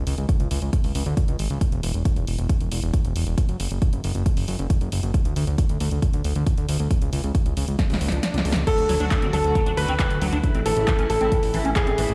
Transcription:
0.07 analog synth bass C#2, open hi-hat
0.18 analog synth bass C#2, closed hi-hat
0.29 kick, closed hi-hat
0.40 analog synth bass C#2, closed hi-hat
0.51 analog synth bass C#2, open hi-hat
0.62 analog synth bass C#2, closed hi-hat
0.73 kick, closed hi-hat
0.84 analog synth bass C#2, open hi-hat
0.95 analog synth bass C#2, open hi-hat
1.06 analog synth bass D2, closed hi-hat
1.17 kick, closed hi-hat
1.28 analog synth bass C#2, closed hi-hat
1.39 analog synth bass G#1, open hi-hat
1.50 analog synth bass C#2, closed hi-hat
1.61 kick, closed hi-hat
1.72 analog synth bass E1, closed hi-hat
1.83 analog synth bass E1, open hi-hat
1.94 analog synth bass E1, closed hi-hat
2.05 kick, closed hi-hat
2.16 analog synth bass E1, closed hi-hat
2.27 analog synth bass E1, open hi-hat
2.38 analog synth bass E1, closed hi-hat
2.49 kick, closed hi-hat
2.60 analog synth bass E1, closed hi-hat
2.71 analog synth bass E1, open hi-hat
2.83 analog synth bass E1, closed hi-hat
2.94 kick, closed hi-hat
3.05 analog synth bass E1, closed hi-hat
3.16 analog synth bass E1, open hi-hat
3.27 analog synth bass E1, closed hi-hat
3.38 kick, closed hi-hat
3.49 analog synth bass F#1, closed hi-hat
3.60 analog synth bass F#1, open hi-hat
3.71 analog synth bass F#1, closed hi-hat
3.82 kick, closed hi-hat
3.93 analog synth bass F#1, closed hi-hat
4.04 analog synth bass F#1, open hi-hat
4.15 analog synth bass F#1, closed hi-hat
4.26 kick, closed hi-hat
4.37 analog synth bass F#1, open hi-hat
4.48 analog synth bass F#1, open hi-hat
4.59 analog synth bass F#1, closed hi-hat
4.70 kick, closed hi-hat
4.81 analog synth bass F#1, closed hi-hat
4.92 analog synth bass F#1, open hi-hat
5.03 analog synth bass F#1, closed hi-hat
5.14 kick, closed hi-hat
5.25 analog synth bass D2, closed hi-hat
5.36 analog synth bass D2, open hi-hat
5.47 analog synth bass D2, closed hi-hat
5.58 kick, closed hi-hat
5.69 analog synth bass D2, closed hi-hat
5.80 analog synth bass D2, open hi-hat
5.91 analog synth bass D2, closed hi-hat
6.02 kick, closed hi-hat
6.13 analog synth bass D2, closed hi-hat
6.24 analog synth bass D2, open hi-hat
6.36 analog synth bass D2, closed hi-hat
6.47 kick, closed hi-hat
6.58 analog synth bass D2, closed hi-hat
6.69 analog synth bass D2, open hi-hat
6.80 analog synth bass D2, closed hi-hat
6.91 kick, closed hi-hat
7.02 analog synth bass C#2, closed hi-hat
7.13 analog synth bass C#2, open hi-hat
7.24 analog synth bass C#2, closed hi-hat
7.35 kick, closed hi-hat
7.46 analog synth bass C#2, closed hi-hat
7.57 analog synth bass C#2, open hi-hat
7.68 analog synth bass C#2, closed hi-hat
7.79 kick, snare, closed hi-hat, swell
7.90 analog synth bass C#2, snare, open hi-hat
8.01 analog synth bass C#2, open hi-hat
8.08 analog synth bass C#2, snare, closed hi-hat
8.23 snare, closed hi-hat
8.34 analog synth bass C#2, snare, closed hi-hat
8.45 analog synth bass C#2, open hi-hat
8.52 analog synth bass C#2, snare, closed hi-hat
8.67 string section D3 F#3 A3 F#4, acid bass F#3, grand piano A4, kick, closed hi-hat, crash
8.78 analog synth bass D2, closed hi-hat
8.89 analog synth bass D2, acid bass F#3, open hi-hat
9.00 analog synth bass D2, string section D3 F#3 A3 F#4, acid bass D4, closed hi-hat
9.11 kick, clap, closed hi-hat
9.22 analog synth bass D2, string section D3 F#3 A3 F#4, acid bass C4, closed hi-hat
9.33 analog synth bass D2, acid bass F#3, grand piano A4, open hi-hat
9.44 analog synth bass D2, string section D3 F#3 A3 F#4, closed hi-hat
9.55 acid bass F#3, kick, closed hi-hat
9.66 analog synth bass D2, acid bass D4, closed hi-hat
9.77 analog synth bass D2, string section D3 F#3 A3 F#4, grand piano B4, open hi-hat
9.88 analog synth bass D2, acid bass C4, closed hi-hat
9.99 string section D3 F#3 A3 F#4, acid bass F#3, kick, clap, closed hi-hat
10.10 analog synth bass D2, closed hi-hat
10.21 analog synth bass D2, string section D3 F#3 A3 F#4, acid bass F#3, open hi-hat
10.32 analog synth bass D2, acid bass D4, closed hi-hat
10.44 string section C#3 E3 A3 E4, kick, closed hi-hat
10.55 analog synth bass A1, acid bass C4, closed hi-hat
10.66 analog synth bass A1, acid bass E3, grand piano A4, open hi-hat
10.77 analog synth bass A1, string section C#3 E3 A3 E4, closed hi-hat
10.88 acid bass E3, kick, clap, closed hi-hat
10.99 analog synth bass A1, string section C#3 E3 A3 E4, acid bass C#4, closed hi-hat
11.10 analog synth bass A1, grand piano A4, open hi-hat
11.21 analog synth bass A1, string section C#3 E3 A3 E4, acid bass C4, closed hi-hat
11.32 acid bass E3, kick, closed hi-hat
11.43 analog synth bass A1, open hi-hat
11.54 analog synth bass A1, string section C#3 E3 A3 E4, acid bass E3, open hi-hat
11.65 analog synth bass A1, acid bass C#4, closed hi-hat
11.76 string section C#3 E3 A3 E4, grand piano G#4, kick, clap, closed hi-hat
11.87 analog synth bass A1, acid bass C4, closed hi-hat
11.98 analog synth bass A1, string section C#3 E3 A3 E4, acid bass E3, open hi-hat
12.09 analog synth bass A1, closed hi-hat

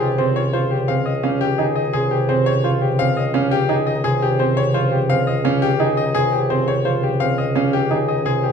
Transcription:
Already playing: bassoon C#2, harp C3 C#3 D#3 F3 G3
0.00 clarinet F4, grand piano G4
0.18 harp C#3, grand piano C4 C5, clarinet F4
0.36 clarinet F4, grand piano C#5
0.53 harp F3, grand piano F4 C5, clarinet F4
0.71 grand piano G4
0.88 harp C#3, grand piano C4 F5
1.06 grand piano D#5
1.23 harp G3, grand piano C#4 F5
1.41 grand piano G4
1.58 harp D#3, grand piano D#4 G#4
1.76 grand piano D#5
1.93 harp C3, grand piano G#4
2.11 grand piano G4
2.29 harp C#3, grand piano C4 C5
2.46 grand piano C#5
2.64 harp F3, grand piano F4 C5
2.81 grand piano G4
2.99 harp C#3, grand piano C4 F5
3.17 grand piano D#5
3.34 harp G3, grand piano C#4 F5
3.51 grand piano G4
3.69 harp D#3, grand piano D#4 G#4
3.87 grand piano D#5
4.04 harp C3, grand piano G#4
4.22 grand piano G4
4.39 harp C#3, grand piano C4 C5
4.57 grand piano C#5
4.74 harp F3, grand piano F4 C5
4.92 grand piano G4
5.10 harp C#3, grand piano C4 F5
5.27 grand piano D#5
5.45 harp G3, grand piano C#4 F5
5.62 grand piano G4
5.80 harp D#3, grand piano D#4 G#4
5.97 grand piano D#5
6.15 harp C3, grand piano G#4
6.32 grand piano G4
6.50 harp C#3, grand piano C4 C5
6.68 grand piano C#5
6.85 harp F3, grand piano F4 C5
7.03 grand piano G4
7.20 harp C#3, grand piano C4 F5
7.38 grand piano D#5
7.55 harp G3, grand piano C#4 F5
7.73 grand piano G4
7.90 harp D#3, grand piano D#4 G#4
8.08 grand piano D#5
8.25 harp C3, grand piano G#4
8.43 grand piano G4

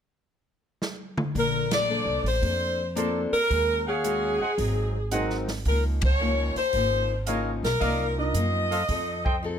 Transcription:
0.82 snare
1.18 mid tom
1.35 upright bass A#1, steel-string acoustic guitar A#3 D4 A4 C5, kick, open hi-hat
1.39 saxophone section A#4
1.71 saxophone section D5, snare, ride
1.89 steel-string acoustic guitar A#3 D4 A4 C5
2.06 upright bass C2
2.24 upright bass A1, saxophone section C5, open hi-hat
2.41 upright bass F2, steel-string acoustic guitar A#3 D4 A4 C5, kick, open hi-hat
2.95 steel-string acoustic guitar A#3 D4 A4 C5, grand piano C4 D4 F4 A4, trumpet section A#4 C5 D5 A5, closed hi-hat
3.32 saxophone section A#4, muted upright bass stroke, open hi-hat
3.50 upright bass D#2, steel-string acoustic guitar D#3 G#3 C#4 F#4, kick, open hi-hat
3.87 trumpet section G#4 C#5 F5 F#5, saxophone section G#4
4.04 steel-string acoustic guitar D#3 G#3 C#4 F#4, closed hi-hat
4.39 trumpet section G#4 C5 D#5 F#5, muted upright bass stroke
4.57 upright bass G#1, steel-string acoustic guitar G#2 F#3 C4 D#4, kick, open hi-hat
5.11 steel-string acoustic guitar G#2 F#3 C4 D#4, grand piano C4 D#4 F#4 A#4, trumpet section G#4 C5 D#5 F#5, closed hi-hat
5.30 snare
5.48 snare, open hi-hat
5.65 upright bass C#2, steel-string acoustic guitar C#3 F3 A#3 D#4, saxophone section A#4, kick, open hi-hat
6.02 kick, ride
6.06 saxophone section C#5
6.19 steel-string acoustic guitar C#3 F3 A#3 D#4
6.56 saxophone section C5, muted upright bass stroke, open hi-hat
6.73 upright bass G#1, steel-string acoustic guitar C#3 F3 A#3, kick, open hi-hat
6.77 steel-string acoustic guitar D#4
7.27 steel-string acoustic guitar C#3 F3 A#3 D#4, trumpet section A#4 C#5 D#5 F5, closed hi-hat
7.63 upright bass B1, saxophone section A#4, snare, open hi-hat
7.80 upright bass C2, steel-string acoustic guitar C3 F3 A#3 D#4, trumpet section A#4 D5 D#5 F5, kick, open hi-hat
8.18 grand piano D4 D#4 F4 A#4, saxophone section D#5
8.34 upright bass F#2, steel-string acoustic guitar C3 F3 A#3 D#4, closed hi-hat
8.71 trumpet section A4 C5 D#5 F5, open hi-hat
8.88 upright bass F2, steel-string acoustic guitar F3 C4 D#4 A4, kick, open hi-hat
9.25 trumpet section A4 C5 D#5 G5, kick
9.43 steel-string acoustic guitar F3 C4 D#4 A4

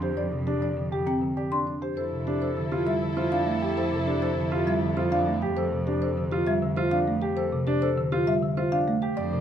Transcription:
Already playing: cello F2
0.02 marimba G4, grand piano C5
0.17 grand piano D5, marimba D5
0.32 marimba C3
0.47 grand piano D4, marimba G4
0.62 grand piano D5, marimba D5
0.77 marimba D3
0.92 grand piano G4, marimba G4
1.07 marimba C4 G5
1.22 marimba D3
1.37 grand piano G4, marimba D5
1.52 grand piano D4, marimba C6
1.67 marimba D4
1.82 marimba G4, grand piano C5
1.97 cello F2, violin section E4 A4, french horn E4, grand piano A4, marimba C5
2.12 marimba C3
2.27 grand piano D4, marimba G4
2.42 grand piano A4, marimba C5
2.57 marimba D3
2.72 grand piano F4, marimba G4
2.87 marimba G3 E5
3.02 marimba D3
3.17 grand piano F4, marimba C5
3.32 grand piano D4, marimba F5
3.47 marimba A3
3.62 grand piano G4, marimba G4
3.77 grand piano A4, marimba C5
3.92 marimba C3
4.07 grand piano D4, marimba G4
4.22 grand piano A4, marimba C5
4.37 marimba D3
4.52 grand piano F4, marimba G4
4.67 marimba G3 E5
4.82 marimba D3
4.97 grand piano F4, marimba C5
5.12 grand piano D4, marimba F5
5.27 marimba A3
5.42 marimba G4, grand piano G4
5.57 grand piano A4, marimba C5
5.72 marimba C3
5.87 grand piano D4, marimba G4
6.02 grand piano A4, marimba C5
6.17 marimba D3
6.31 grand piano F4, marimba G4
6.47 marimba G3 E5
6.62 marimba D3
6.77 grand piano F4, marimba C5
6.91 grand piano D4, marimba F5
7.08 marimba A3
7.22 marimba G4, grand piano G4
7.37 grand piano A4, marimba C5
7.52 marimba C3
7.67 grand piano D4, marimba G4
7.82 grand piano A4, marimba C5
7.98 marimba D3
8.12 grand piano F4, marimba G4
8.27 marimba G3 E5
8.43 marimba D3
8.57 grand piano F4, marimba C5
8.72 grand piano D4, marimba F5
8.88 marimba A3
9.02 marimba G4, grand piano G4
9.17 cello F2, violin section D4 C5, french horn D4, marimba D5, grand piano D5
9.33 marimba C3

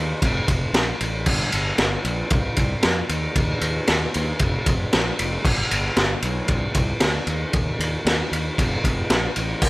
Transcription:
Already playing: fingered electric bass D#2
0.22 fingered electric bass F1, kick, ride
0.48 fingered electric bass F1, kick, ride
0.73 fingered electric bass A#1, snare, ride
1.01 fingered electric bass A1, ride
1.26 fingered electric bass G1, kick, crash
1.52 fingered electric bass G1, ride
1.78 fingered electric bass G1, snare, ride
2.04 fingered electric bass A#1, ride
2.30 fingered electric bass C2, kick, ride
2.56 fingered electric bass C2, kick, ride
2.83 fingered electric bass F2, snare, ride
3.09 fingered electric bass D#2, ride
3.35 fingered electric bass D#2, kick, ride
3.61 fingered electric bass D#2, ride
3.87 fingered electric bass D#2, snare, ride
4.14 fingered electric bass D#2, ride
4.39 fingered electric bass F1, kick, ride
4.66 fingered electric bass F1, kick, ride
4.93 fingered electric bass A#1, snare, ride
5.19 fingered electric bass F1, ride
5.45 fingered electric bass G1, kick, crash
5.71 fingered electric bass G1, ride
5.96 fingered electric bass G1, snare, ride
6.22 fingered electric bass B1, ride
6.48 fingered electric bass C2, kick, ride
6.74 fingered electric bass C2, kick, ride
7.00 fingered electric bass D2, snare, ride
7.27 fingered electric bass D#2, ride
7.53 fingered electric bass D#2, kick, ride
7.79 fingered electric bass D#2, ride
8.05 fingered electric bass D#2, snare, ride
8.31 fingered electric bass D#2, ride
8.58 fingered electric bass F1, kick, ride
8.84 fingered electric bass F1, kick, ride
9.10 fingered electric bass A#1, snare, ride
9.36 fingered electric bass A1, ride
9.62 fingered electric bass G1, kick, crash

